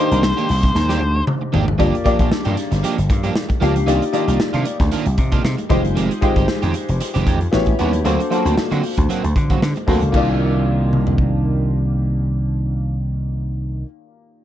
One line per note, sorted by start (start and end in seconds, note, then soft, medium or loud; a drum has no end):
0.00 1.78 A#3 medium
0.00 1.79 D4 medium
0.00 1.82 D#4 medium
0.00 1.79 G4 medium
0.00 1.23 C5 medium
0.00 1.81 C5 medium
0.11 0.31 C2 loud
0.11 0.22 D#3 medium
0.11 0.22 A#3 medium
0.11 0.22 D4 medium
0.11 0.21 A#4 medium
0.11 closed hi-hat medium
0.23 muted clean electric guitar stroke soft
0.23 snare loud
0.37 0.48 D#3 medium
0.37 0.48 A#3 medium
0.37 0.48 D4 medium
0.37 0.49 G4 medium
0.37 closed hi-hat medium
0.49 0.69 C2 loud
0.49 muted clean electric guitar stroke soft
0.49 snare soft
0.49 open hi-hat medium
0.63 muted clean electric guitar stroke soft
0.63 kick medium
0.63 snare soft
0.63 closed hi-hat medium
0.75 1.01 D#2 medium
0.75 muted clean electric guitar stroke soft
0.75 snare medium
0.89 1.01 D#3 medium
0.89 1.01 A#3 medium
0.89 1.01 D4 medium
0.89 1.01 G4 medium
0.89 snare medium
1.01 1.21 D2 medium
1.01 muted clean electric guitar stroke soft
1.15 muted clean electric guitar stroke soft
1.27 muted clean electric guitar stroke soft
1.27 mid tom medium
1.41 muted clean electric guitar stroke soft
1.53 1.73 G#1 loud
1.53 1.68 D#3 medium
1.53 1.66 A#3 medium
1.53 1.66 D4 medium
1.53 1.65 G4 loud
1.53 floor tom loud
1.66 muted clean electric guitar stroke soft
1.66 floor tom loud
1.78 1.90 G1 loud
1.78 1.93 F3 medium
1.78 2.02 A#3 medium
1.78 1.94 A#3 medium
1.78 2.03 D4 medium
1.78 1.94 D4 medium
1.78 2.03 F4 medium
1.78 2.03 G4 medium
1.78 1.94 G4 medium
1.78 2.03 D5 loud
1.78 kick loud
1.78 closed hi-hat medium
1.95 closed hi-hat soft
2.04 2.16 F3 medium
2.04 2.98 A#3 medium
2.04 2.17 A#3 medium
2.04 2.98 D4 medium
2.04 2.17 D4 medium
2.04 2.99 F4 medium
2.04 2.99 G4 medium
2.04 2.17 G4 medium
2.04 2.99 D5 loud
2.04 kick loud
2.04 closed hi-hat medium
2.19 2.29 A#1 medium
2.19 2.30 F3 soft
2.19 2.30 A#3 medium
2.19 2.29 D4 medium
2.19 2.29 G4 medium
2.19 kick loud
2.19 closed hi-hat medium
2.31 muted clean electric guitar stroke soft
2.31 muted slap bass stroke soft
2.31 snare loud
2.45 2.55 G2 loud
2.45 2.56 F3 medium
2.45 2.56 A#3 medium
2.45 2.57 D4 medium
2.45 2.56 G4 medium
2.45 closed hi-hat medium
2.57 muted clean electric guitar stroke soft
2.57 snare soft
2.57 closed hi-hat medium
2.71 2.81 G1 medium
2.71 muted clean electric guitar stroke soft
2.71 snare soft
2.71 closed hi-hat medium
2.83 2.98 F3 medium
2.83 2.97 A#3 medium
2.83 2.97 D4 medium
2.83 2.96 G4 medium
2.83 closed hi-hat medium
2.97 3.07 G1 loud
2.97 muted clean electric guitar stroke soft
2.97 closed hi-hat medium
3.10 3.29 G2 loud
3.10 muted clean electric guitar stroke soft
3.10 kick loud
3.10 closed hi-hat medium
3.23 3.34 F3 medium
3.23 3.34 A#3 medium
3.23 3.33 D4 medium
3.23 3.33 G4 medium
3.23 closed hi-hat medium
3.35 muted clean electric guitar stroke soft
3.35 snare loud
3.49 muted clean electric guitar stroke soft
3.49 kick medium
3.49 closed hi-hat soft
3.60 3.81 C#2 medium
3.60 3.76 F3 medium
3.60 3.75 A#3 medium
3.60 3.85 A#3 medium
3.60 3.85 D4 medium
3.60 3.74 D4 medium
3.60 3.85 F4 medium
3.60 3.74 G4 medium
3.60 3.85 G4 medium
3.60 3.86 F5 medium
3.60 closed hi-hat medium
3.75 muted clean electric guitar stroke soft
3.75 closed hi-hat medium
3.86 3.98 C2 loud
3.86 4.02 D#3 medium
3.86 4.11 A#3 medium
3.86 4.02 A#3 medium
3.86 4.02 D4 medium
3.86 4.11 D#4 medium
3.86 4.11 F4 medium
3.86 4.03 F4 medium
3.86 4.11 G4 medium
3.86 4.11 D5 medium
3.86 closed hi-hat medium
4.02 closed hi-hat soft
4.12 4.25 D#3 medium
4.12 5.07 A#3 medium
4.12 4.25 A#3 medium
4.12 4.25 D4 medium
4.12 5.07 D#4 medium
4.12 5.07 F4 medium
4.12 4.26 F4 medium
4.12 5.07 G4 medium
4.12 5.07 D5 loud
4.12 closed hi-hat medium
4.28 4.37 C2 medium
4.28 4.38 D#3 medium
4.28 4.38 A#3 medium
4.28 4.38 D4 medium
4.28 4.37 F4 medium
4.28 closed hi-hat medium
4.39 muted clean electric guitar stroke soft
4.39 muted slap bass stroke soft
4.39 snare loud
4.53 4.63 C3 loud
4.53 4.65 D#3 medium
4.53 4.65 A#3 medium
4.53 4.65 D4 medium
4.53 4.66 F4 medium
4.53 closed hi-hat medium
4.65 muted clean electric guitar stroke soft
4.65 closed hi-hat medium
4.80 4.89 D2 medium
4.80 muted clean electric guitar stroke soft
4.80 kick medium
4.80 snare soft
4.80 closed hi-hat medium
4.92 5.06 D#3 medium
4.92 5.06 A#3 medium
4.92 5.06 D4 medium
4.92 5.05 F4 medium
4.92 closed hi-hat medium
5.06 5.15 C2 loud
5.06 muted clean electric guitar stroke soft
5.06 closed hi-hat medium
5.18 5.38 C3 loud
5.18 muted clean electric guitar stroke soft
5.18 kick loud
5.18 closed hi-hat medium
5.32 5.42 D#3 medium
5.32 5.42 A#3 medium
5.32 5.42 D4 medium
5.32 5.42 F4 medium
5.32 kick loud
5.32 closed hi-hat medium
5.44 5.55 C3 loud
5.44 muted clean electric guitar stroke soft
5.44 snare loud
5.57 muted clean electric guitar stroke soft
5.57 closed hi-hat medium
5.69 5.81 F1 loud
5.69 5.84 D#3 medium
5.69 6.17 G#3 loud
5.69 5.83 G#3 medium
5.69 5.83 C4 medium
5.69 6.17 D#4 medium
5.69 6.17 F4 medium
5.69 6.17 G4 medium
5.69 5.82 G4 medium
5.69 6.17 C5 loud
5.69 kick loud
5.69 closed hi-hat medium
5.83 5.94 F#1 medium
5.83 muted clean electric guitar stroke soft
5.83 closed hi-hat medium
5.95 6.07 F1 loud
5.95 6.10 D#3 medium
5.95 6.11 G#3 medium
5.95 6.11 C4 medium
5.95 6.11 G4 medium
5.95 closed hi-hat medium
6.11 closed hi-hat medium
6.21 6.34 D#3 medium
6.21 7.15 G#3 medium
6.21 6.34 G#3 medium
6.21 6.34 C4 medium
6.21 7.16 D#4 medium
6.21 7.16 F4 medium
6.21 7.16 G4 medium
6.21 6.34 G4 medium
6.21 7.16 C5 loud
6.21 kick loud
6.21 closed hi-hat medium
6.36 6.45 G1 medium
6.36 6.46 D#3 medium
6.36 6.46 G#3 medium
6.36 6.46 C4 medium
6.36 6.46 G4 medium
6.36 kick medium
6.36 closed hi-hat medium
6.48 muted clean electric guitar stroke soft
6.48 muted slap bass stroke medium
6.48 snare loud
6.62 6.72 F2 loud
6.62 6.73 D#3 medium
6.62 6.74 G#3 medium
6.62 6.74 C4 medium
6.62 6.74 G4 medium
6.62 closed hi-hat medium
6.74 muted clean electric guitar stroke soft
6.74 closed hi-hat medium
6.88 6.98 F1 medium
6.88 muted clean electric guitar stroke soft
6.88 closed hi-hat soft
7.00 muted clean electric guitar stroke soft
7.00 closed hi-hat loud
7.14 7.24 F1 loud
7.14 7.25 D#3 medium
7.14 7.26 G#3 medium
7.14 7.26 C4 medium
7.14 7.26 G4 medium
7.14 closed hi-hat soft
7.26 7.46 F2 loud
7.26 7.38 D#3 medium
7.26 7.38 G#3 medium
7.26 7.38 C4 medium
7.26 7.38 G4 medium
7.26 kick medium
7.26 closed hi-hat medium
7.41 closed hi-hat soft
7.51 7.73 A1 loud
7.51 7.75 B3 medium
7.51 7.76 E4 medium
7.51 7.76 F#4 medium
7.51 7.76 G4 medium
7.51 7.76 C#5 loud
7.51 muted clean electric guitar stroke soft
7.51 snare loud
7.66 muted clean electric guitar stroke soft
7.66 kick medium
7.66 closed hi-hat medium
7.79 7.99 D#2 loud
7.79 7.93 G3 medium
7.79 8.02 B3 medium
7.79 7.93 B3 medium
7.79 7.92 C#4 loud
7.79 8.02 E4 medium
7.79 8.02 F#4 medium
7.79 7.92 F#4 medium
7.79 8.03 G4 medium
7.79 8.03 C#5 medium
7.79 closed hi-hat medium
7.93 muted clean electric guitar stroke soft
7.93 closed hi-hat medium
8.05 8.16 D2 loud
8.05 8.19 F#3 medium
8.05 8.28 A#3 medium
8.05 8.19 A#3 medium
8.05 8.20 C4 medium
8.05 8.28 D4 medium
8.05 8.28 F#4 medium
8.05 8.20 F#4 loud
8.05 8.28 A4 medium
8.05 8.29 C5 medium
8.05 closed hi-hat medium
8.20 closed hi-hat medium
8.30 8.42 F#3 medium
8.30 9.24 A#3 medium
8.30 8.42 A#3 medium
8.30 8.43 C4 medium
8.30 9.24 D4 medium
8.30 8.38 F4 medium
8.30 8.43 F#4 medium
8.30 9.25 A4 medium
8.30 9.25 C5 loud
8.30 closed hi-hat medium
8.37 9.27 F#4 medium
8.45 8.54 D2 medium
8.45 8.55 F#3 medium
8.45 8.55 A#3 medium
8.45 8.55 C4 medium
8.45 8.55 F#4 medium
8.45 closed hi-hat medium
8.57 muted clean electric guitar stroke soft
8.57 muted slap bass stroke soft
8.57 snare loud
8.71 8.80 D3 medium
8.71 8.82 F#3 medium
8.71 8.83 A#3 medium
8.71 8.83 C4 medium
8.71 8.83 F#4 medium
8.71 closed hi-hat medium
8.83 muted clean electric guitar stroke soft
8.83 open hi-hat medium
8.98 9.07 D2 medium
8.98 muted clean electric guitar stroke soft
8.98 kick medium
8.98 closed hi-hat soft
9.09 9.24 F#3 medium
9.09 9.24 A#3 medium
9.09 9.23 C4 medium
9.09 9.23 F#4 medium
9.09 closed hi-hat medium
9.24 9.33 D2 loud
9.24 muted clean electric guitar stroke soft
9.24 closed hi-hat soft
9.36 9.55 D3 medium
9.36 muted clean electric guitar stroke soft
9.36 kick loud
9.36 closed hi-hat medium
9.50 9.60 F#3 medium
9.50 9.60 A#3 soft
9.50 9.60 C4 medium
9.50 9.59 F#4 medium
9.50 kick medium
9.50 closed hi-hat soft
9.62 9.72 D3 medium
9.62 snare loud
9.76 muted clean electric guitar stroke soft
9.76 closed hi-hat soft
9.87 9.98 D2 medium
9.87 10.02 F#3 medium
9.87 10.10 A#3 medium
9.87 10.02 A#3 medium
9.87 10.01 C4 medium
9.87 10.10 D4 medium
9.87 10.11 F#4 medium
9.87 10.01 F#4 medium
9.87 10.11 A4 medium
9.87 10.11 C5 medium
9.87 kick medium
9.87 open hi-hat medium
10.02 10.11 C#2 medium
10.02 muted clean electric guitar stroke soft
10.02 closed hi-hat medium
10.11 13.83 C2 medium
10.11 13.85 D#3 medium
10.11 13.81 D#3 medium
10.11 13.80 A#3 medium
10.11 13.87 A#3 medium
10.11 13.82 F4 medium
10.11 13.83 G4 medium
10.11 kick loud
10.11 crash medium
10.16 13.88 D4 medium
10.16 13.90 F4 medium
10.16 13.85 D5 medium
10.93 mid tom medium
11.07 floor tom medium
11.18 kick medium